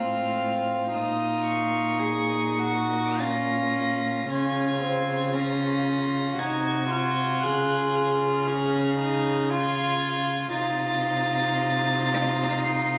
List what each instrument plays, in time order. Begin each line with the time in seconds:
Already playing: cello A2, viola C4, violin F4 F6
0.94 cello A#2, viola D#4, violin F4 D#6
1.46 violin C#6
2.00 violin G#4
2.59 violin F#4
3.19 viola C#4, violin F4 A#6
4.29 cello C#3, viola C#4, violin F4 G#6
4.82 viola C4
5.34 viola C#4, violin F4 A#6
6.38 cello C3, viola D#4, violin F#4 G#6
6.91 viola F4
7.43 cello C#3, violin G#4 F#6
7.95 violin F6
8.47 viola C#4, violin G#4
8.98 viola D#4
9.49 violin F4 G#6, viola F4
10.52 cello C3, viola D#4, violin F4 A6
12.62 violin C7